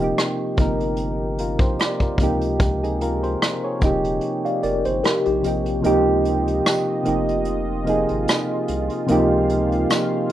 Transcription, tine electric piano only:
4.45 D5 F5
4.63 A#4 D5
4.86 C5
5.04 G4 A#4
5.26 D#4 G4

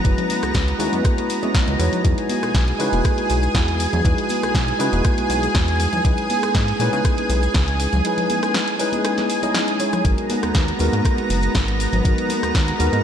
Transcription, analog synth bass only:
0.05 F#1
0.43 C#2
0.55 C#2
0.79 D#2
0.92 F#2
1.67 C#2
1.79 E2
2.04 E2
2.43 B1
2.54 B1
2.80 C#3
2.93 E1
3.30 B1
3.55 E2
3.93 E2
4.05 E2
4.43 B1
4.54 B1
4.80 C#3
4.92 E1
5.17 B1
5.29 B1
5.55 E2
5.92 E2
6.04 C#2
6.43 G#2
6.55 G#2
6.80 A#2
6.93 C#3
7.29 B1
7.55 C#2
7.93 C#2
10.05 G#1
10.43 D#2
10.55 D#2
10.80 D#2
10.93 G#2
11.30 F#1
11.55 G#1
11.93 G#1
12.05 G#1
12.43 D#2
12.55 D#2
12.80 D#2
12.93 G#2

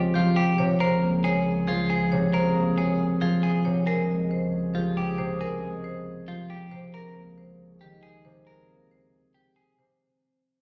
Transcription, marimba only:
0.14 G4
0.58 C#5
0.80 C5
1.25 C#5
1.68 G#4
2.12 C#5
2.33 C5
2.78 C#5
3.21 G#4
3.65 C#5
3.86 A#4
4.31 C5
4.75 G4
5.18 C5
5.41 A#4
5.84 C5
6.28 G4
6.71 C5
6.94 A#4
7.38 C5
7.81 G4
8.25 C5
8.47 A#4
8.91 C5
9.35 G4
9.79 C5

